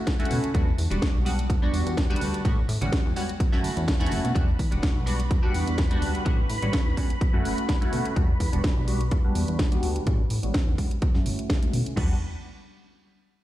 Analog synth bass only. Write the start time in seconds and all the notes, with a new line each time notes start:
0.31 B2
0.55 E2
0.78 E2
0.91 E1
1.15 B1
1.50 E2
1.73 E2
1.86 E2
2.21 D2
2.45 A2
2.69 A2
2.82 A1
3.05 E2
3.53 F#2
3.77 E2
4.01 E2
4.12 F#1
4.24 B2
4.35 E2
4.59 E2
4.72 E1
4.96 B1
5.31 E2
5.55 E2
5.67 E2
6.02 D2
6.26 A2
6.50 A2
6.63 A1
6.86 E2
7.34 F#2
7.45 F#1
7.93 B2
8.16 E2
8.40 E2
8.53 E1
8.77 B1
9.11 E2
9.36 E2
9.48 E2
9.83 D2
10.07 A2
10.31 A2
10.43 A1
10.67 E2
11.15 F#2
11.26 F#1
11.74 B2
11.97 E2